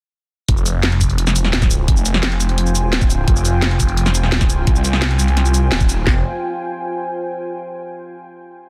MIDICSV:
0, 0, Header, 1, 4, 480
1, 0, Start_track
1, 0, Key_signature, -4, "minor"
1, 0, Tempo, 348837
1, 669, Time_signature, 4, 2, 24, 8
1, 11960, End_track
2, 0, Start_track
2, 0, Title_t, "Ambient pad"
2, 0, Program_c, 0, 92
2, 665, Note_on_c, 0, 72, 80
2, 665, Note_on_c, 0, 79, 77
2, 666, Note_on_c, 0, 80, 93
2, 667, Note_on_c, 0, 65, 89
2, 8292, Note_off_c, 0, 65, 0
2, 8292, Note_off_c, 0, 72, 0
2, 8292, Note_off_c, 0, 79, 0
2, 8292, Note_off_c, 0, 80, 0
2, 11960, End_track
3, 0, Start_track
3, 0, Title_t, "Detuned saw bass"
3, 0, Program_c, 1, 39
3, 668, Note_on_c, 1, 29, 98
3, 2044, Note_off_c, 1, 29, 0
3, 2044, Note_on_c, 1, 27, 98
3, 2347, Note_off_c, 1, 27, 0
3, 2347, Note_on_c, 1, 25, 98
3, 2569, Note_off_c, 1, 25, 0
3, 2589, Note_on_c, 1, 29, 96
3, 3965, Note_off_c, 1, 29, 0
3, 3965, Note_on_c, 1, 27, 96
3, 4267, Note_off_c, 1, 27, 0
3, 4267, Note_on_c, 1, 25, 96
3, 4489, Note_off_c, 1, 25, 0
3, 4509, Note_on_c, 1, 29, 98
3, 5885, Note_off_c, 1, 29, 0
3, 5885, Note_on_c, 1, 27, 98
3, 6187, Note_off_c, 1, 27, 0
3, 6187, Note_on_c, 1, 25, 98
3, 6409, Note_off_c, 1, 25, 0
3, 6428, Note_on_c, 1, 36, 97
3, 7129, Note_off_c, 1, 36, 0
3, 7148, Note_on_c, 1, 36, 99
3, 7849, Note_off_c, 1, 36, 0
3, 7868, Note_on_c, 1, 27, 97
3, 8329, Note_off_c, 1, 27, 0
3, 8348, Note_on_c, 1, 29, 96
3, 8572, Note_off_c, 1, 29, 0
3, 11960, End_track
4, 0, Start_track
4, 0, Title_t, "Drums"
4, 667, Note_on_c, 9, 42, 96
4, 668, Note_on_c, 9, 36, 127
4, 788, Note_on_c, 9, 82, 28
4, 805, Note_off_c, 9, 42, 0
4, 806, Note_off_c, 9, 36, 0
4, 908, Note_off_c, 9, 82, 0
4, 908, Note_on_c, 9, 42, 71
4, 908, Note_on_c, 9, 82, 62
4, 1045, Note_off_c, 9, 42, 0
4, 1045, Note_off_c, 9, 82, 0
4, 1148, Note_on_c, 9, 38, 121
4, 1148, Note_on_c, 9, 42, 95
4, 1268, Note_off_c, 9, 42, 0
4, 1268, Note_on_c, 9, 42, 40
4, 1285, Note_off_c, 9, 38, 0
4, 1388, Note_off_c, 9, 42, 0
4, 1388, Note_on_c, 9, 36, 63
4, 1388, Note_on_c, 9, 42, 70
4, 1388, Note_on_c, 9, 82, 60
4, 1508, Note_off_c, 9, 42, 0
4, 1508, Note_on_c, 9, 42, 39
4, 1526, Note_off_c, 9, 36, 0
4, 1526, Note_off_c, 9, 82, 0
4, 1628, Note_off_c, 9, 42, 0
4, 1628, Note_on_c, 9, 42, 99
4, 1748, Note_on_c, 9, 40, 50
4, 1748, Note_on_c, 9, 82, 27
4, 1765, Note_off_c, 9, 42, 0
4, 1868, Note_off_c, 9, 82, 0
4, 1868, Note_on_c, 9, 42, 73
4, 1868, Note_on_c, 9, 82, 59
4, 1886, Note_off_c, 9, 40, 0
4, 1988, Note_on_c, 9, 40, 35
4, 2006, Note_off_c, 9, 42, 0
4, 2006, Note_off_c, 9, 82, 0
4, 2108, Note_on_c, 9, 38, 121
4, 2108, Note_on_c, 9, 42, 94
4, 2126, Note_off_c, 9, 40, 0
4, 2229, Note_off_c, 9, 42, 0
4, 2229, Note_on_c, 9, 36, 111
4, 2229, Note_on_c, 9, 40, 61
4, 2229, Note_on_c, 9, 42, 40
4, 2229, Note_on_c, 9, 82, 28
4, 2246, Note_off_c, 9, 38, 0
4, 2349, Note_off_c, 9, 42, 0
4, 2349, Note_off_c, 9, 82, 0
4, 2349, Note_on_c, 9, 42, 70
4, 2349, Note_on_c, 9, 82, 60
4, 2366, Note_off_c, 9, 36, 0
4, 2367, Note_off_c, 9, 40, 0
4, 2486, Note_off_c, 9, 42, 0
4, 2486, Note_off_c, 9, 82, 0
4, 2588, Note_on_c, 9, 42, 96
4, 2589, Note_on_c, 9, 36, 127
4, 2708, Note_on_c, 9, 82, 27
4, 2726, Note_off_c, 9, 42, 0
4, 2727, Note_off_c, 9, 36, 0
4, 2829, Note_off_c, 9, 82, 0
4, 2829, Note_on_c, 9, 42, 68
4, 2829, Note_on_c, 9, 82, 61
4, 2948, Note_on_c, 9, 40, 59
4, 2967, Note_off_c, 9, 42, 0
4, 2967, Note_off_c, 9, 82, 0
4, 3068, Note_on_c, 9, 38, 127
4, 3068, Note_on_c, 9, 42, 95
4, 3086, Note_off_c, 9, 40, 0
4, 3189, Note_off_c, 9, 42, 0
4, 3189, Note_on_c, 9, 42, 39
4, 3206, Note_off_c, 9, 38, 0
4, 3308, Note_off_c, 9, 42, 0
4, 3308, Note_on_c, 9, 42, 68
4, 3308, Note_on_c, 9, 82, 58
4, 3427, Note_off_c, 9, 42, 0
4, 3427, Note_on_c, 9, 42, 38
4, 3446, Note_off_c, 9, 82, 0
4, 3548, Note_off_c, 9, 42, 0
4, 3548, Note_on_c, 9, 42, 91
4, 3668, Note_on_c, 9, 82, 26
4, 3685, Note_off_c, 9, 42, 0
4, 3788, Note_off_c, 9, 82, 0
4, 3788, Note_on_c, 9, 42, 68
4, 3788, Note_on_c, 9, 82, 60
4, 3925, Note_off_c, 9, 42, 0
4, 3925, Note_off_c, 9, 82, 0
4, 4028, Note_on_c, 9, 38, 123
4, 4028, Note_on_c, 9, 42, 93
4, 4148, Note_off_c, 9, 42, 0
4, 4148, Note_on_c, 9, 42, 38
4, 4148, Note_on_c, 9, 82, 28
4, 4149, Note_on_c, 9, 36, 111
4, 4166, Note_off_c, 9, 38, 0
4, 4268, Note_off_c, 9, 42, 0
4, 4268, Note_off_c, 9, 82, 0
4, 4268, Note_on_c, 9, 42, 70
4, 4268, Note_on_c, 9, 82, 59
4, 4286, Note_off_c, 9, 36, 0
4, 4405, Note_off_c, 9, 42, 0
4, 4405, Note_off_c, 9, 82, 0
4, 4508, Note_on_c, 9, 36, 127
4, 4508, Note_on_c, 9, 42, 93
4, 4628, Note_on_c, 9, 82, 27
4, 4646, Note_off_c, 9, 36, 0
4, 4646, Note_off_c, 9, 42, 0
4, 4748, Note_off_c, 9, 82, 0
4, 4748, Note_on_c, 9, 42, 66
4, 4748, Note_on_c, 9, 82, 58
4, 4886, Note_off_c, 9, 42, 0
4, 4886, Note_off_c, 9, 82, 0
4, 4987, Note_on_c, 9, 38, 127
4, 4987, Note_on_c, 9, 42, 92
4, 5107, Note_off_c, 9, 42, 0
4, 5107, Note_on_c, 9, 42, 37
4, 5125, Note_off_c, 9, 38, 0
4, 5226, Note_off_c, 9, 42, 0
4, 5226, Note_on_c, 9, 42, 65
4, 5226, Note_on_c, 9, 82, 59
4, 5228, Note_on_c, 9, 36, 66
4, 5346, Note_off_c, 9, 42, 0
4, 5346, Note_on_c, 9, 42, 37
4, 5364, Note_off_c, 9, 82, 0
4, 5366, Note_off_c, 9, 36, 0
4, 5468, Note_off_c, 9, 42, 0
4, 5468, Note_on_c, 9, 42, 88
4, 5587, Note_on_c, 9, 40, 50
4, 5587, Note_on_c, 9, 82, 26
4, 5605, Note_off_c, 9, 42, 0
4, 5707, Note_off_c, 9, 82, 0
4, 5707, Note_on_c, 9, 42, 67
4, 5707, Note_on_c, 9, 82, 58
4, 5725, Note_off_c, 9, 40, 0
4, 5827, Note_on_c, 9, 40, 33
4, 5845, Note_off_c, 9, 42, 0
4, 5845, Note_off_c, 9, 82, 0
4, 5947, Note_on_c, 9, 38, 123
4, 5947, Note_on_c, 9, 42, 91
4, 5965, Note_off_c, 9, 40, 0
4, 6067, Note_off_c, 9, 42, 0
4, 6067, Note_on_c, 9, 40, 60
4, 6067, Note_on_c, 9, 42, 36
4, 6067, Note_on_c, 9, 82, 27
4, 6068, Note_on_c, 9, 36, 118
4, 6084, Note_off_c, 9, 38, 0
4, 6187, Note_off_c, 9, 42, 0
4, 6187, Note_off_c, 9, 82, 0
4, 6187, Note_on_c, 9, 42, 67
4, 6187, Note_on_c, 9, 82, 57
4, 6205, Note_off_c, 9, 40, 0
4, 6206, Note_off_c, 9, 36, 0
4, 6325, Note_off_c, 9, 42, 0
4, 6325, Note_off_c, 9, 82, 0
4, 6427, Note_on_c, 9, 42, 93
4, 6428, Note_on_c, 9, 36, 125
4, 6547, Note_on_c, 9, 82, 27
4, 6565, Note_off_c, 9, 42, 0
4, 6566, Note_off_c, 9, 36, 0
4, 6667, Note_off_c, 9, 82, 0
4, 6667, Note_on_c, 9, 42, 65
4, 6667, Note_on_c, 9, 82, 59
4, 6787, Note_on_c, 9, 40, 56
4, 6805, Note_off_c, 9, 42, 0
4, 6805, Note_off_c, 9, 82, 0
4, 6906, Note_on_c, 9, 38, 125
4, 6906, Note_on_c, 9, 42, 91
4, 6925, Note_off_c, 9, 40, 0
4, 7027, Note_off_c, 9, 42, 0
4, 7027, Note_on_c, 9, 42, 37
4, 7044, Note_off_c, 9, 38, 0
4, 7147, Note_off_c, 9, 42, 0
4, 7147, Note_on_c, 9, 42, 65
4, 7147, Note_on_c, 9, 82, 60
4, 7267, Note_off_c, 9, 42, 0
4, 7267, Note_on_c, 9, 42, 34
4, 7285, Note_off_c, 9, 82, 0
4, 7387, Note_off_c, 9, 42, 0
4, 7387, Note_on_c, 9, 40, 33
4, 7387, Note_on_c, 9, 42, 90
4, 7507, Note_off_c, 9, 42, 0
4, 7507, Note_on_c, 9, 42, 36
4, 7507, Note_on_c, 9, 82, 27
4, 7525, Note_off_c, 9, 40, 0
4, 7627, Note_off_c, 9, 42, 0
4, 7627, Note_off_c, 9, 82, 0
4, 7627, Note_on_c, 9, 42, 65
4, 7627, Note_on_c, 9, 82, 57
4, 7765, Note_off_c, 9, 42, 0
4, 7765, Note_off_c, 9, 82, 0
4, 7867, Note_on_c, 9, 38, 122
4, 7867, Note_on_c, 9, 42, 87
4, 7988, Note_off_c, 9, 42, 0
4, 7988, Note_on_c, 9, 36, 115
4, 7988, Note_on_c, 9, 42, 37
4, 7988, Note_on_c, 9, 82, 28
4, 8005, Note_off_c, 9, 38, 0
4, 8108, Note_off_c, 9, 42, 0
4, 8108, Note_off_c, 9, 82, 0
4, 8108, Note_on_c, 9, 42, 65
4, 8108, Note_on_c, 9, 82, 59
4, 8125, Note_off_c, 9, 36, 0
4, 8245, Note_off_c, 9, 42, 0
4, 8245, Note_off_c, 9, 82, 0
4, 8348, Note_on_c, 9, 36, 110
4, 8348, Note_on_c, 9, 38, 109
4, 8485, Note_off_c, 9, 38, 0
4, 8486, Note_off_c, 9, 36, 0
4, 11960, End_track
0, 0, End_of_file